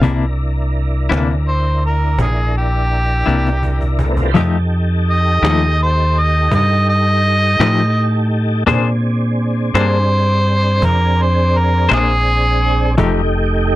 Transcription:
0.02 1.08 C2 medium
0.02 0.24 C3 medium
0.02 0.25 A#3 medium
0.02 4.13 D4 medium
0.02 0.25 D4 medium
0.02 4.16 E4 medium
0.02 0.25 E4 medium
0.02 4.31 A#4 medium
0.02 cajon bass loud
0.74 cajon slap soft
1.09 2.16 D2 medium
1.09 1.33 C3 medium
1.09 1.33 A#3 medium
1.09 1.33 D4 medium
1.09 1.32 E4 medium
1.09 cajon slap medium
1.48 1.83 C5 medium
1.83 cajon slap soft
1.84 2.20 A#4 medium
1.84 cajon slap soft
2.18 3.24 A#1 medium
2.18 2.56 G#4 medium
2.18 cajon bass medium
2.58 3.97 G4 medium
3.26 4.32 C2 medium
3.26 3.49 C3 soft
3.26 3.49 A#3 soft
3.26 3.49 D4 soft
3.26 3.48 E4 medium
3.26 cajon slap soft
3.29 cajon slap medium
3.47 cajon slap medium
3.63 cajon bass medium
3.81 cajon bass medium
3.99 cajon bass medium
4.05 4.29 A3 medium
4.05 4.31 B3 medium
4.11 4.32 C4 medium
4.11 4.34 D4 medium
4.17 4.35 E4 medium
4.17 4.37 F4 medium
4.17 cajon bass medium
4.23 4.35 G4 medium
4.23 4.36 A4 medium
4.28 4.41 B4 medium
4.28 4.42 C5 medium
4.34 5.40 F2 medium
4.34 4.56 F3 medium
4.34 4.57 A3 medium
4.34 8.63 D#4 medium
4.34 4.58 D#4 medium
4.34 4.57 G4 medium
4.34 8.64 G4 medium
4.34 8.64 A4 medium
4.34 4.43 D5 medium
4.34 cajon bass loud
4.71 cajon slap soft
5.08 5.79 D#5 medium
5.08 cajon slap soft
5.42 6.48 D#2 medium
5.42 5.66 F3 medium
5.42 5.65 A3 medium
5.42 5.65 D#4 medium
5.42 5.65 G4 medium
5.42 cajon slap loud
5.79 6.21 C5 medium
5.79 cajon slap soft
6.19 6.52 D#5 medium
6.51 7.56 G2 medium
6.51 6.88 D#5 medium
6.51 cajon bass loud
6.88 8.28 D#5 loud
6.88 cajon slap soft
7.24 cajon slap soft
7.60 8.64 A2 medium
7.60 7.82 F3 medium
7.60 7.82 A3 medium
7.60 7.81 D#4 medium
7.60 7.81 G4 medium
7.60 cajon slap loud
7.96 cajon slap soft
8.32 cajon slap soft
8.67 9.72 A#2 medium
8.67 8.88 A#3 medium
8.67 12.95 C4 medium
8.67 8.89 D4 medium
8.67 12.95 D4 medium
8.67 8.89 G#4 medium
8.67 12.96 G#4 medium
8.67 8.89 C5 loud
8.67 cajon bass loud
9.03 cajon slap soft
9.39 cajon slap soft
9.74 10.79 G2 medium
9.74 9.97 A#3 medium
9.74 9.97 D4 medium
9.74 9.97 G#4 medium
9.74 9.96 C5 medium
9.74 10.87 C5 loud
9.74 cajon slap loud
10.10 cajon slap soft
10.46 cajon slap soft
10.82 11.87 F2 medium
10.82 11.23 A#4 medium
10.82 cajon bass loud
11.22 11.59 C5 medium
11.54 cajon slap soft
11.56 11.91 A#4 medium
11.56 cajon slap soft
11.89 12.96 A#1 medium
11.89 12.12 A#3 medium
11.89 12.12 D4 medium
11.89 12.12 G#4 medium
11.89 12.11 C5 medium
11.89 cajon slap medium
11.93 12.97 G#4 loud
12.97 13.76 F1 medium
12.97 13.20 F3 medium
12.97 13.76 A3 medium
12.97 13.20 A3 medium
12.97 13.76 D#4 medium
12.97 13.20 D#4 medium
12.97 13.76 G4 medium
12.97 13.21 G4 medium
12.97 cajon bass loud
13.34 cajon slap soft
13.70 cajon slap soft

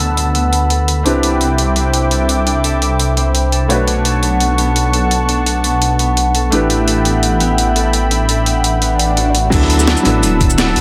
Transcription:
0.00 1.04 D2 medium
0.00 0.35 B3 medium
0.00 1.02 D4 medium
0.00 1.05 D4 medium
0.00 1.03 E4 medium
0.00 0.31 F#4 medium
0.00 1.03 F#4 medium
0.00 0.70 A4 medium
0.00 1.04 A4 medium
0.00 1.04 B4 medium
0.00 1.02 F#5 medium
0.00 1.02 A5 medium
0.00 3.66 B5 medium
0.00 1.03 E6 medium
0.00 downlifter medium
0.17 closed hi-hat medium
0.35 1.47 B3 medium
0.35 closed hi-hat medium
0.53 closed hi-hat medium
0.70 1.23 A4 medium
0.70 closed hi-hat medium
0.88 closed hi-hat medium
1.03 3.69 C2 medium
1.03 3.67 C4 medium
1.03 3.67 D4 medium
1.03 2.46 D4 medium
1.03 3.68 E4 medium
1.03 3.69 G4 medium
1.03 3.68 E5 medium
1.03 3.68 G5 medium
1.03 3.68 D6 medium
1.03 closed hi-hat medium
1.08 3.69 B4 medium
1.23 2.11 A4 medium
1.23 closed hi-hat medium
1.41 1.76 C4 medium
1.41 closed hi-hat medium
1.58 closed hi-hat medium
1.76 2.81 C4 medium
1.76 closed hi-hat medium
1.94 closed hi-hat medium
2.11 2.64 A4 medium
2.11 closed hi-hat medium
2.29 closed hi-hat medium
2.46 3.87 D4 medium
2.46 closed hi-hat medium
2.64 3.52 A4 medium
2.64 closed hi-hat medium
2.82 3.16 C4 medium
2.82 closed hi-hat medium
3.00 closed hi-hat medium
3.17 4.29 C4 medium
3.17 closed hi-hat medium
3.35 closed hi-hat medium
3.52 4.05 A4 medium
3.52 closed hi-hat medium
3.68 6.51 B1 medium
3.68 6.49 A3 medium
3.68 6.50 D4 medium
3.68 6.51 F#4 medium
3.68 6.50 C#5 medium
3.68 6.50 F#5 medium
3.68 6.50 A5 medium
3.68 6.50 C#6 medium
3.68 closed hi-hat medium
3.72 6.52 B4 medium
3.87 5.28 D4 medium
3.87 closed hi-hat medium
4.05 4.93 A4 medium
4.05 closed hi-hat medium
4.23 4.58 B3 medium
4.23 closed hi-hat medium
4.40 closed hi-hat medium
4.58 5.64 B3 medium
4.58 closed hi-hat medium
4.76 closed hi-hat medium
4.93 5.46 A4 medium
4.93 closed hi-hat medium
5.11 closed hi-hat medium
5.29 6.69 D4 medium
5.29 closed hi-hat medium
5.46 6.34 A4 medium
5.46 closed hi-hat medium
5.64 5.99 B3 medium
5.64 closed hi-hat medium
5.82 closed hi-hat medium
5.99 7.05 B3 medium
5.99 closed hi-hat medium
6.17 closed hi-hat medium
6.35 6.87 A4 medium
6.35 closed hi-hat medium
6.50 9.51 A1 medium
6.50 9.32 A3 medium
6.50 9.32 D4 medium
6.50 9.33 E4 medium
6.50 9.33 G4 medium
6.50 9.49 E5 medium
6.50 9.49 G5 medium
6.50 9.49 B5 medium
6.50 closed hi-hat medium
6.55 9.34 B4 medium
6.70 8.11 D4 medium
6.70 closed hi-hat medium
6.88 7.75 A4 medium
6.88 closed hi-hat medium
7.05 7.40 B3 medium
7.05 closed hi-hat medium
7.23 closed hi-hat medium
7.40 8.46 B3 medium
7.40 closed hi-hat medium
7.58 closed hi-hat medium
7.76 8.28 A4 medium
7.76 closed hi-hat medium
7.93 closed hi-hat medium
8.11 9.52 D4 medium
8.11 closed hi-hat medium
8.29 10.48 A4 medium
8.29 closed hi-hat medium
8.46 8.81 B3 medium
8.46 closed hi-hat medium
8.64 closed hi-hat medium
8.82 10.81 B3 medium
8.82 closed hi-hat medium
8.82 swell medium
8.99 closed hi-hat medium
9.17 10.75 F#4 medium
9.17 closed hi-hat medium
9.35 closed hi-hat medium
9.50 9.96 D2 loud
9.50 10.01 F#3 medium
9.50 10.03 B3 medium
9.50 10.03 D4 medium
9.50 10.81 D4 medium
9.50 10.04 E4 medium
9.50 10.81 F#5 medium
9.50 10.81 A5 medium
9.50 10.81 B5 medium
9.50 10.81 E6 medium
9.50 kick loud
9.50 closed hi-hat medium
9.50 crash loud
9.50 shaker medium
9.55 10.04 A4 loud
9.62 snare soft
9.70 closed hi-hat medium
9.79 snare medium
9.79 shaker medium
9.87 10.58 D5 loud
9.87 snare loud
9.87 closed hi-hat medium
9.97 shaker soft
10.03 10.24 A1 loud
10.03 10.81 F#3 medium
10.03 10.81 B3 medium
10.03 10.81 D4 medium
10.03 10.81 E4 medium
10.03 snare soft
10.03 closed hi-hat medium
10.03 closed hi-hat loud
10.07 10.81 A4 medium
10.23 10.75 D1 loud
10.23 closed hi-hat medium
10.23 shaker soft
10.41 10.81 A3 medium
10.41 kick loud
10.41 closed hi-hat medium
10.41 closed hi-hat loud
10.41 shaker soft
10.50 shaker medium
10.58 10.81 D5 loud
10.58 snare loud
10.58 closed hi-hat medium
10.58 shaker medium
10.67 snare medium
10.76 10.81 B1 loud
10.76 10.81 F#4 medium
10.76 closed hi-hat loud
10.76 closed hi-hat medium

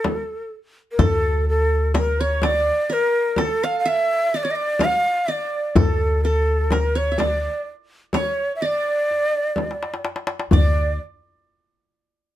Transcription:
0.00 0.47 A4 medium
0.00 0.52 A4 medium
0.04 darbuka tek medium
0.04 frame drum medium
0.92 1.03 A#4 medium
0.99 2.69 D2 medium
0.99 2.01 A4 medium
0.99 1.48 A4 medium
0.99 darbuka dum medium
0.99 frame drum medium
1.47 1.93 A4 medium
1.47 darbuka ka soft
1.94 2.89 A#4 medium
1.94 2.22 A#4 medium
1.94 darbuka tek medium
1.94 frame drum medium
2.20 2.46 C#5 medium
2.20 2.49 C#5 medium
2.42 3.42 D5 medium
2.42 2.94 D5 medium
2.42 darbuka tek medium
2.42 frame drum medium
2.90 3.44 A#4 medium
2.90 3.42 A#4 medium
3.36 4.55 A4 medium
3.36 darbuka tek medium
3.36 frame drum medium
3.41 3.66 A4 medium
3.64 3.92 F5 medium
3.64 3.79 F5 medium
3.79 3.90 F5 medium
3.85 4.77 E5 medium
3.85 4.38 E5 loud
3.85 darbuka ka soft
4.34 4.44 D5 medium
4.34 4.45 D5 medium
4.43 4.52 C#5 medium
4.43 5.28 D5 medium
4.51 4.57 D#5 medium
4.56 4.86 D5 medium
4.79 5.69 F5 medium
4.79 darbuka tek medium
4.79 frame drum medium
4.85 5.33 F5 medium
5.28 6.27 D5 medium
5.28 5.78 D5 medium
5.75 7.46 D2 medium
5.75 6.24 A4 medium
5.75 6.22 A4 medium
5.75 frame drum medium
5.75 darbuka dum medium
6.24 6.73 A4 medium
6.24 6.28 A#4 medium
6.71 6.98 A#4 medium
6.71 6.96 A#4 medium
6.71 darbuka tek medium
6.71 frame drum medium
6.95 7.13 C#5 medium
6.95 7.21 C#5 medium
7.12 7.19 E5 soft
7.18 7.63 D5 medium
7.18 7.67 D5 medium
7.18 darbuka tek medium
7.18 frame drum medium
8.13 8.63 C#5 medium
8.13 8.53 C#5 medium
8.13 darbuka tek medium
8.13 frame drum medium
8.56 8.63 E5 medium
8.61 10.01 D5 medium
8.61 8.67 D#5 medium
8.61 darbuka ka soft
8.66 10.05 D5 loud
9.11 darbuka ka soft
9.56 darbuka tek soft
9.56 frame drum medium
9.71 darbuka ka soft
9.83 darbuka tek medium
9.94 darbuka ka medium
10.05 darbuka tek medium
10.16 darbuka ka medium
10.27 darbuka tek medium
10.40 darbuka ka medium
10.51 10.96 D2 medium
10.51 10.97 D5 medium
10.51 frame drum medium
10.51 darbuka dum medium

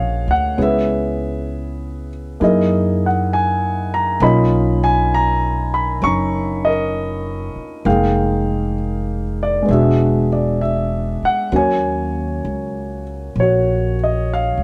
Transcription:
0.00 0.25 A#1 soft
0.00 0.59 F3 soft
0.00 0.56 A#3 soft
0.00 0.57 C#4 soft
0.00 0.56 G#4 soft
0.00 0.59 C#5 medium
0.00 0.60 D#5 medium
0.00 0.31 F5 medium
0.00 0.31 F#5 medium
0.00 0.60 G#5 medium
0.28 0.56 D2 medium
0.28 0.60 F#5 medium
0.57 2.36 C#2 medium
0.57 2.40 B3 soft
0.57 2.40 C#4 soft
0.57 2.40 E4 soft
0.57 2.41 G#4 soft
0.62 2.39 B4 soft
0.62 2.09 E5 medium
2.40 4.18 F#2 medium
2.40 4.20 A#3 soft
2.40 4.21 D#4 soft
2.40 4.23 E4 soft
2.40 4.23 G#4 soft
2.40 3.05 D#5 medium
2.44 4.20 A#4 soft
3.06 3.34 F#5 soft
3.33 3.89 G#5 medium
3.94 4.24 A#5 medium
4.20 5.99 B1 medium
4.20 7.84 A#3 soft
4.20 6.01 C#4 soft
4.20 6.04 D#4 soft
4.20 7.86 F4 medium
4.20 6.00 D#5 soft
4.20 4.79 B5 medium
4.84 5.11 G#5 medium
5.14 5.71 A#5 medium
5.74 6.01 B5 medium
6.02 7.51 F#1 medium
6.02 7.85 C#4 soft
6.02 7.82 A#5 soft
6.02 6.67 C#6 medium
6.06 7.84 D#4 soft
6.65 7.83 A#4 soft
6.65 7.89 D#5 medium
7.56 muted upright bass stroke soft
7.85 9.64 F1 medium
7.85 9.61 G#3 soft
7.85 9.68 A#3 soft
7.85 9.68 D#4 soft
7.85 9.65 G#4 soft
7.85 8.73 F5 medium
7.85 9.68 G5 medium
9.43 9.71 D5 medium
9.62 11.49 G#3 soft
9.62 11.50 B3 soft
9.68 11.18 E1 medium
9.68 11.53 D4 soft
9.68 11.49 G#4 soft
9.68 10.27 E5 medium
9.73 11.52 F#4 soft
10.33 10.62 D5 medium
10.61 11.24 E5 medium
11.23 11.51 F#5 medium
11.23 muted upright bass stroke soft
11.52 12.40 D#2 medium
11.52 14.63 F#3 soft
11.52 14.63 A#3 soft
11.52 14.63 C#4 soft
11.52 13.40 F#4 soft
11.56 13.34 C#5 soft
11.56 13.04 G#5 medium
12.45 13.32 C#2 medium
13.36 14.53 A#1 medium
13.40 14.63 F#4 soft
13.40 13.95 C#5 medium
14.04 14.31 D#5 medium
14.34 14.63 F5 medium
14.57 14.63 C#2 soft

